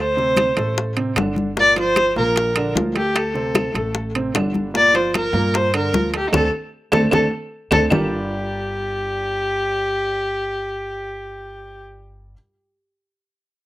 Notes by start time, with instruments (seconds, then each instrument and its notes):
Already playing: upright bass D2, upright piano A3 A4
0.00 fiddle C5
0.17 upright piano C3 C4, high bongo, high conga
0.37 high bongo, high conga, high timbale, claves
0.57 upright bass A1, upright piano A3 A4, high bongo, high conga, high timbale
0.77 high bongo, high conga
0.97 upright piano C3 C4, high conga, high timbale
1.16 upright bass G1, upright piano D3 D4, high bongo, low bongo, high conga, high timbale, low timbale, claves
1.36 high bongo, high conga
1.57 upright piano A#2 A#3, fiddle D5, high bongo, high conga
1.76 upright piano F3 F4, fiddle C5, high bongo, high conga, high timbale
1.96 high bongo, high conga, high timbale, claves
2.16 upright bass A#1, upright piano A#2 A#3, fiddle A#4, high conga
2.36 high bongo, high conga, high timbale
2.56 upright piano D3 D4, high bongo, high conga, high timbale, claves
2.75 upright bass D2, upright piano F3 F4, high bongo, low bongo, high conga, low timbale
2.95 upright piano A3 A4, fiddle G4, high bongo, high conga, high timbale
3.15 fiddle A4, high bongo, high conga, high timbale, claves
3.34 upright piano C3 C4, high bongo, high conga
3.55 high bongo, high conga, high timbale, claves
3.74 upright bass A1, upright piano A3 A4, high bongo, high conga, high timbale
3.95 high bongo, high conga
4.15 upright piano C3 C4, high conga, high timbale
4.34 upright bass G1, upright piano D3 D4, high bongo, low bongo, high conga, high timbale, low timbale, claves
4.54 high bongo, high conga
4.74 upright piano A#2 A#3, fiddle D5, high bongo, high conga
4.94 upright piano F3 F4, fiddle C5, high bongo, high conga, high timbale
5.14 fiddle A#4, high bongo, high conga, high timbale, claves
5.33 upright bass G2, upright piano A#2 A#3, high conga
5.54 fiddle C5, high bongo, high conga, high timbale
5.74 upright piano D3 D4, fiddle A#4, high bongo, high conga, high timbale, claves
5.93 upright bass D2, upright piano F3 F4, high bongo, low bongo, high conga
6.14 upright piano A3 A4, fiddle G4, high bongo, high conga, high timbale
6.28 fiddle D#4
6.32 upright bass D2, upright piano A3 C4 D4, fiddle A4, high bongo, low conga, high timbale, claves
6.92 upright bass D2, upright piano A3 C4 D4, fiddle A4, high bongo, low conga, high timbale, claves
7.11 upright bass D2, upright piano A3 C4 D4, fiddle A4, high bongo, low conga, high timbale, claves
7.71 upright bass D2, upright piano A3 C4 D4, fiddle A4, high bongo, low conga, high timbale, claves
7.90 upright bass G1, upright piano G3 D4 F4 G4 A#4 D5, fiddle G4, low bongo, low conga, low timbale, claves